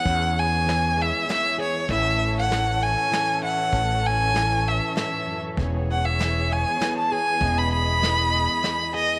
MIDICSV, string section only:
0, 0, Header, 1, 2, 480
1, 0, Start_track
1, 0, Key_signature, 4, "major"
1, 0, Tempo, 612870
1, 42, Time_signature, 3, 2, 24, 8
1, 7200, End_track
2, 0, Start_track
2, 0, Title_t, "String section"
2, 0, Program_c, 0, 48
2, 0, Note_on_c, 0, 52, 59
2, 0, Note_on_c, 0, 59, 58
2, 0, Note_on_c, 0, 68, 59
2, 0, Note_on_c, 0, 73, 65
2, 1444, Note_off_c, 0, 68, 0
2, 1445, Note_off_c, 0, 59, 0
2, 1488, Note_on_c, 0, 61, 65
2, 1492, Note_on_c, 0, 69, 70
2, 4335, Note_off_c, 0, 73, 0
2, 4348, Note_off_c, 0, 61, 0
2, 4350, Note_off_c, 0, 69, 0
2, 4366, Note_on_c, 0, 59, 61
2, 4368, Note_on_c, 0, 68, 61
2, 4368, Note_on_c, 0, 73, 71
2, 5794, Note_off_c, 0, 73, 0
2, 5808, Note_on_c, 0, 75, 68
2, 7200, Note_off_c, 0, 52, 0
2, 7200, Note_off_c, 0, 59, 0
2, 7200, Note_off_c, 0, 68, 0
2, 7200, Note_off_c, 0, 75, 0
2, 7200, End_track
0, 0, End_of_file